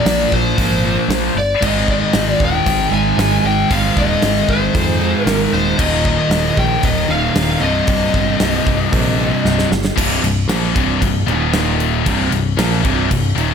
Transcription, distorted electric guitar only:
0.00 1.34 A#2 medium
0.00 1.35 F3 loud
0.00 1.36 A#3 loud
1.61 3.68 G#2 medium
1.61 3.69 D#3 loud
1.61 3.70 G#3 loud
3.70 5.77 G#2 medium
3.70 5.77 D#3 medium
3.70 5.78 G#3 loud
5.78 7.60 D#2 medium
5.78 7.60 A#2 loud
5.78 7.61 D#3 loud
7.61 9.69 C2 loud
7.61 9.70 G2 loud
7.61 9.70 C3 loud
9.96 10.22 C2 medium
9.96 10.22 G2 medium
9.96 10.23 C3 loud
10.23 10.44 C2 medium
10.23 10.44 G2 medium
10.48 10.73 A#2 medium
10.48 10.74 F3 medium
10.48 10.74 A#3 loud
10.73 11.00 C2 loud
10.73 11.00 G2 loud
10.73 11.00 C3 medium
11.01 11.22 C2 medium
11.01 11.22 G2 medium
11.26 12.05 D#2 medium
11.26 12.05 A#2 medium
11.26 12.05 D#3 loud
12.05 12.30 C2 medium
12.05 12.30 G2 loud
12.05 12.31 C3 loud
12.31 12.53 C2 medium
12.31 12.53 G2 medium
12.57 12.82 A#2 loud
12.57 12.82 F3 loud
12.57 12.82 A#3 medium
12.82 13.08 C2 loud
12.82 13.08 G2 loud
12.82 13.09 C3 loud
13.09 13.31 C2 medium
13.09 13.31 G2 medium
13.35 13.54 D#2 medium
13.35 13.54 A#2 loud
13.35 13.54 D#3 loud

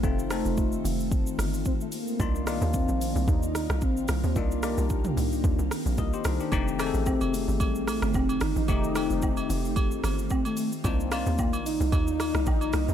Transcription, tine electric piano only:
0.00 0.04 A3 medium
0.00 0.26 A3 medium
0.00 0.04 C4 medium
0.00 0.26 C4 medium
0.00 0.04 D#4 medium
0.00 0.05 F4 medium
0.04 0.26 D#4 medium
0.04 0.26 F4 medium
0.31 1.18 A3 medium
0.31 1.18 C4 medium
0.31 1.18 D#4 medium
0.31 1.18 A4 medium
2.20 2.42 A#3 medium
2.20 2.42 D4 medium
2.20 2.42 D#4 medium
2.20 2.42 F4 medium
2.47 3.34 A#3 medium
2.47 3.34 D4 medium
2.47 3.34 D#4 medium
2.47 3.34 F4 medium
4.36 4.58 A#3 medium
4.36 4.58 D4 medium
4.36 4.59 D#4 medium
4.36 4.59 F4 medium
4.63 5.50 A#3 medium
4.63 5.50 D4 medium
4.63 5.50 D#4 medium
4.63 5.51 G4 medium
5.99 6.13 A#4 medium
5.99 6.13 D#5 medium
6.14 6.25 G4 medium
6.14 6.25 C5 medium
6.26 6.40 D#4 medium
6.26 6.40 A4 medium
6.40 6.66 D4 medium
6.40 6.52 G4 medium
6.52 6.74 A3 medium
6.52 6.74 C4 medium
6.52 6.75 D#4 medium
6.52 6.75 G4 loud
6.79 7.66 A3 medium
6.79 7.66 C4 medium
6.79 7.66 D#4 medium
6.79 6.87 G#4 medium
6.87 7.70 A4 medium
8.68 8.91 A3 medium
8.68 8.91 C4 medium
8.68 8.91 D#4 medium
8.68 8.91 G4 medium
8.95 9.82 A3 medium
8.95 9.83 C4 medium
8.95 9.83 D#4 medium
8.95 9.83 G4 medium
10.85 11.07 A#3 medium
10.85 11.07 D4 medium
10.85 11.07 D#4 medium
10.85 11.07 F4 medium
11.12 11.99 A#3 medium
11.12 11.99 D#4 medium
11.12 11.99 F4 medium
11.12 11.99 D5 medium

